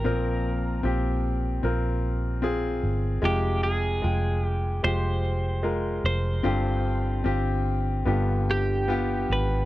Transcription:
Already playing: A#4
0.04 A#1 A#2 F3 C4 F4 A#4
0.83 A#1 C4 F4 G4
1.63 A#1 C4 F4 A#4
2.42 C4 F4 G#4
2.83 G1
3.22 F1 C3 G#3 F4 G4 G5
3.63 G#4
4.02 F1 G#3 F4 G5
4.45 G4
4.83 F1 G#3 F4 G4 C5
5.63 G#3 F4 A#4
6.04 F1 C5
6.43 G1 G2 D3 C4 F4 G4
7.24 G1 C4 F4 G4
8.05 G1 G2 D3 B3 F4 G4
8.51 G4
8.88 B3 F4 G4
9.30 G#1 B4

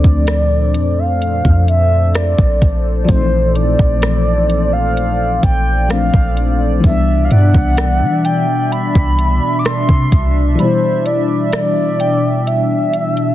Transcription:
Already playing: A#2 F3 A3 C4 D4 A4 C5 D5
0.04 D2, kick
0.27 cross-stick, closed hi-hat
0.74 F2, closed hi-hat
0.99 F5
1.22 closed hi-hat
1.45 F2, kick
1.68 E5, closed hi-hat
2.15 D5, cross-stick, closed hi-hat
2.38 A#1, kick
2.62 kick, closed hi-hat
3.03 F3 D5
3.08 A#1 A3 C4 C5, kick, closed hi-hat
3.14 D#4
3.21 E3
3.55 D5, closed hi-hat
3.79 A#1, kick
4.02 cross-stick, closed hi-hat
4.50 closed hi-hat
4.73 F5
4.97 closed hi-hat
5.43 A#1 G5, kick, closed hi-hat
5.89 F3 A3 C4 F5, cross-stick, closed hi-hat
5.93 D4
6.14 A#1, kick
6.37 closed hi-hat
6.80 C2 E3 G3, kick, closed hi-hat
6.84 B2 B3 D4 E5
6.90 D4
7.25 F5
7.31 G2 D5 F#5, closed hi-hat
7.54 C2, kick
7.77 cross-stick, closed hi-hat
8.02 E3
8.25 G5, closed hi-hat
8.72 B5, closed hi-hat
8.95 C2, kick
9.19 closed hi-hat
9.59 D6
9.65 C6, cross-stick, closed hi-hat
9.89 C3, kick
10.12 C2, kick, closed hi-hat
10.55 E3 G3, closed hi-hat
10.59 B2 C5 B5
10.65 E4
11.06 D5, closed hi-hat
11.53 D5, cross-stick, closed hi-hat
12.00 G5, closed hi-hat
12.47 E5, closed hi-hat
12.94 closed hi-hat
13.17 closed hi-hat

